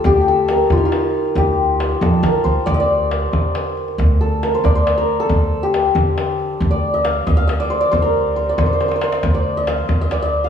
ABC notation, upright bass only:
X:1
M:6/8
L:1/16
Q:3/8=91
K:none
V:1 name="Upright bass" clef=bass
D,,6 D,6 | D,,6 F,,2 D,2 D,, z | D,,6 D,6 | D,,6 D,,6 |
D,,6 D,6 | D,,6 D,,6 | D,,6 D,6 | D,,6 D,,6 |]